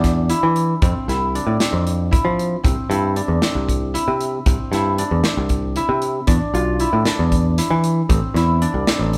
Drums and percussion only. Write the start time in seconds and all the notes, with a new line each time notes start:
0.04 kick, snare, closed hi-hat
0.30 closed hi-hat
0.56 closed hi-hat
0.82 kick, closed hi-hat
1.09 snare, closed hi-hat
1.35 closed hi-hat
1.60 snare, closed hi-hat
1.87 closed hi-hat
2.13 kick, closed hi-hat
2.39 closed hi-hat
2.64 kick, closed hi-hat
2.91 closed hi-hat
3.16 closed hi-hat
3.42 snare, closed hi-hat
3.69 kick, closed hi-hat
3.95 closed hi-hat
4.21 closed hi-hat
4.46 kick, closed hi-hat
4.73 snare, closed hi-hat
4.98 closed hi-hat
5.24 snare, closed hi-hat
5.49 kick, closed hi-hat
5.76 closed hi-hat
6.02 closed hi-hat
6.27 kick, closed hi-hat
6.55 closed hi-hat
6.80 closed hi-hat
7.05 snare, closed hi-hat
7.32 kick, closed hi-hat
7.58 snare, closed hi-hat
7.84 closed hi-hat
8.10 kick, closed hi-hat
8.36 snare, closed hi-hat
8.62 closed hi-hat
8.87 snare, closed hi-hat
9.13 closed hi-hat